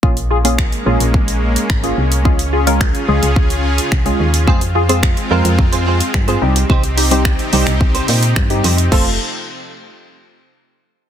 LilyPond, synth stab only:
\new Staff \with { instrumentName = "Synth stab" } { \time 4/4 \key f \minor \tempo 4 = 108 <bes des' f' aes'>16 r16 <f' aes'>16 <bes des' f' aes'>16 r8 <bes des' f' aes'>8. r4 <bes des' f' aes'>16 r8 | <aes des' f' aes'>16 r16 <f' aes'>16 <aes des' f' bes'>16 r8 <aes des' f' aes'>8. r4 <aes des' f' aes'>16 r8 | <aes c' f' aes'>16 r16 <f' aes'>16 <aes c' f' aes'>16 r8 <aes c' f' bes'>8. r4 <aes c' f' aes'>16 <g c' ees' g'>8~ | <g c' ees' g'>16 r16 <ees' g'>16 <g c' ees' g'>16 r8 <g c' ees' g'>8. r4 <g c' ees' g'>16 r8 |
<a c' f' a'>8 r2. r8 | }